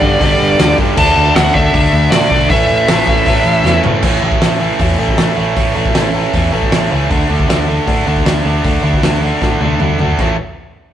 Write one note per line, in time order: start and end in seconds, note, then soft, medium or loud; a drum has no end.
0.00 0.15 G1 medium
0.00 0.18 G2 medium
0.00 0.19 G2 loud
0.00 0.20 D3 loud
0.00 0.19 D3 loud
0.00 0.20 G3 loud
0.00 0.98 D4 loud
0.00 0.74 D5 loud
0.00 kick loud
0.20 0.34 G1 loud
0.20 0.58 G2 loud
0.20 0.59 D3 loud
0.20 0.59 G3 loud
0.20 kick loud
0.20 open hi-hat medium
0.39 0.53 G1 loud
0.59 0.73 D2 loud
0.59 0.77 G2 medium
0.59 0.77 D3 loud
0.59 0.79 G3 medium
0.59 snare loud
0.59 open hi-hat medium
0.78 0.96 G2 medium
0.78 0.92 G2 loud
0.78 0.96 D3 medium
0.78 0.97 G3 loud
0.78 kick medium
0.97 1.11 D2 loud
0.97 1.34 D3 medium
0.97 1.36 A3 medium
0.97 1.35 D4 loud
0.97 1.35 A5 loud
0.97 kick loud
0.97 crash loud
1.16 1.30 D2 loud
1.35 1.49 D2 medium
1.35 1.53 D3 medium
1.35 1.54 A3 medium
1.35 1.54 D4 medium
1.35 1.55 F#5 medium
1.35 snare loud
1.35 open hi-hat medium
1.54 1.68 D2 loud
1.54 1.71 D3 medium
1.54 1.73 A3 loud
1.54 1.72 D4 loud
1.54 2.11 E5 loud
1.54 kick loud
1.73 1.88 D2 loud
1.73 2.10 D3 loud
1.73 2.12 A3 loud
1.73 2.12 D4 loud
1.73 kick loud
1.73 open hi-hat medium
1.93 2.07 D2 loud
2.11 2.25 A2 medium
2.11 2.29 D3 medium
2.11 2.31 A3 medium
2.11 2.31 D4 loud
2.11 2.47 D5 medium
2.11 snare loud
2.11 open hi-hat medium
2.31 2.45 B1 medium
2.31 2.48 D3 medium
2.31 2.49 A3 loud
2.31 2.49 D4 loud
2.31 kick loud
2.49 2.64 A1 medium
2.49 2.87 A2 medium
2.49 2.87 E3 medium
2.49 2.88 A3 loud
2.49 3.80 E5 medium
2.49 kick loud
2.49 open hi-hat medium
2.69 2.83 A1 loud
2.88 3.02 A1 medium
2.88 3.05 A2 medium
2.88 3.06 E3 loud
2.88 3.06 A3 loud
2.88 snare loud
2.88 open hi-hat medium
3.06 3.21 A1 medium
3.06 3.24 A2 medium
3.06 3.25 E3 loud
3.06 3.25 A3 loud
3.06 kick loud
3.25 3.40 A1 loud
3.25 3.63 A2 loud
3.25 3.64 E3 loud
3.25 3.64 A3 loud
3.25 kick loud
3.25 open hi-hat medium
3.44 3.59 A1 loud
3.64 3.78 E2 loud
3.64 3.82 A2 medium
3.64 3.83 E3 medium
3.64 3.83 A3 loud
3.64 snare medium
3.83 4.01 A2 loud
3.83 3.97 A2 medium
3.83 4.02 E3 loud
3.83 4.02 A3 loud
3.83 floor tom loud
4.02 4.17 A1 medium
4.02 4.21 A2 medium
4.02 4.21 E3 medium
4.02 4.22 A3 medium
4.02 kick loud
4.02 crash loud
4.21 4.36 A1 medium
4.21 4.41 A2 medium
4.21 4.41 E3 medium
4.21 4.42 A3 medium
4.32 kick loud
4.41 4.69 A1 medium
4.41 4.60 A2 medium
4.41 4.61 E3 medium
4.41 4.61 A3 medium
4.41 snare loud
4.41 open hi-hat medium
4.60 4.77 A2 medium
4.60 4.78 E3 medium
4.60 4.79 A3 medium
4.78 4.94 E2 medium
4.78 4.97 A2 loud
4.78 4.97 E3 loud
4.78 4.99 A3 loud
4.78 kick medium
4.78 open hi-hat medium
4.98 5.13 A1 loud
4.98 5.16 A2 medium
4.98 5.17 E3 medium
4.98 5.18 A3 medium
5.08 kick medium
5.17 5.32 A1 medium
5.17 5.36 A2 medium
5.17 5.37 E3 medium
5.17 5.38 A3 loud
5.17 snare loud
5.17 open hi-hat medium
5.37 5.52 A1 medium
5.37 5.55 A2 medium
5.37 5.56 E3 medium
5.37 5.58 A3 medium
5.56 5.71 A1 medium
5.56 5.74 A2 medium
5.56 5.75 E3 medium
5.56 5.77 A3 loud
5.56 kick loud
5.56 open hi-hat medium
5.76 5.90 A1 medium
5.76 5.94 A2 medium
5.76 5.95 E3 loud
5.76 5.96 A3 medium
5.86 kick medium
5.95 6.23 A1 medium
5.95 6.13 A2 loud
5.95 6.14 E3 loud
5.95 6.15 A3 loud
5.95 snare loud
5.95 open hi-hat medium
6.14 6.32 A2 medium
6.14 6.33 E3 medium
6.14 6.34 A3 medium
6.33 6.48 E2 loud
6.33 6.51 A2 medium
6.33 6.52 E3 loud
6.33 6.53 A3 loud
6.33 kick loud
6.33 open hi-hat medium
6.52 6.67 A1 medium
6.52 6.71 A2 medium
6.52 6.71 E3 medium
6.52 6.73 A3 medium
6.63 kick medium
6.72 6.86 A1 medium
6.72 6.89 A2 medium
6.72 6.90 E3 medium
6.72 6.91 A3 loud
6.72 snare loud
6.72 open hi-hat medium
6.90 7.05 C#2 medium
6.90 7.09 A2 medium
6.90 7.09 E3 medium
6.90 7.10 A3 medium
7.09 7.25 D2 loud
7.09 7.28 D3 medium
7.09 7.29 A3 loud
7.09 7.29 D4 loud
7.09 kick loud
7.09 open hi-hat medium
7.29 7.44 D2 medium
7.29 7.47 D3 medium
7.29 7.47 A3 medium
7.29 7.48 D4 medium
7.40 kick loud
7.47 7.77 D2 medium
7.47 7.67 D3 medium
7.47 7.68 A3 medium
7.47 7.68 D4 medium
7.47 snare loud
7.47 open hi-hat medium
7.68 7.86 D3 medium
7.68 7.88 A3 medium
7.68 7.87 D4 medium
7.87 8.02 A2 medium
7.87 8.05 D3 medium
7.87 8.06 A3 medium
7.87 8.06 D4 loud
7.87 kick loud
7.87 open hi-hat medium
8.06 8.21 D2 medium
8.06 8.25 D3 medium
8.06 8.27 A3 medium
8.06 8.26 D4 medium
8.16 kick medium
8.26 8.40 D2 medium
8.26 8.44 D3 medium
8.26 8.45 A3 loud
8.26 8.45 D4 loud
8.26 snare loud
8.26 open hi-hat medium
8.45 8.59 D2 medium
8.45 8.63 D3 medium
8.45 8.64 A3 medium
8.45 8.64 D4 medium
8.64 8.78 D2 medium
8.64 8.82 D3 medium
8.64 8.82 A3 loud
8.64 8.83 D4 loud
8.64 kick loud
8.64 open hi-hat medium
8.83 8.97 D2 medium
8.83 9.01 D3 medium
8.83 9.02 A3 medium
8.83 9.03 D4 medium
8.93 kick medium
9.02 9.31 D2 medium
9.02 9.21 D3 medium
9.02 9.22 A3 loud
9.02 9.23 D4 loud
9.02 snare loud
9.02 open hi-hat medium
9.22 9.41 D3 medium
9.22 9.41 A3 medium
9.22 9.42 D4 medium
9.42 9.56 A2 medium
9.42 9.60 D3 medium
9.42 9.61 A3 loud
9.42 9.61 D4 medium
9.42 kick loud
9.42 snare medium
9.61 9.75 D2 medium
9.61 9.79 D3 medium
9.61 9.80 A3 medium
9.61 9.80 D4 medium
9.61 high tom medium
9.79 9.94 D2 medium
9.79 9.98 D3 loud
9.79 9.99 A3 medium
9.79 10.00 D4 medium
9.79 mid tom medium
9.99 10.13 D2 medium
9.99 10.18 D3 medium
9.99 10.18 A3 medium
9.99 10.18 D4 medium
9.99 floor tom medium
10.19 10.36 A1 medium
10.19 10.34 A2 medium
10.19 10.35 E3 medium
10.19 10.35 A3 loud
10.19 kick loud
10.19 crash medium